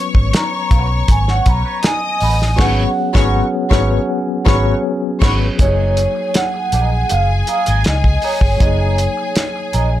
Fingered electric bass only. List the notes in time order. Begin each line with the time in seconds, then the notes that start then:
0.15 G#1
0.71 B1
1.09 G#1
1.47 B1
2.22 A1
2.59 G#1
3.15 G#1
3.72 G#1
4.47 G#1
5.22 G#1
5.60 F#1
6.73 A#1
7.12 F#1
7.68 G#1
7.86 C#2
8.42 G1
8.61 F#1
9.74 A#1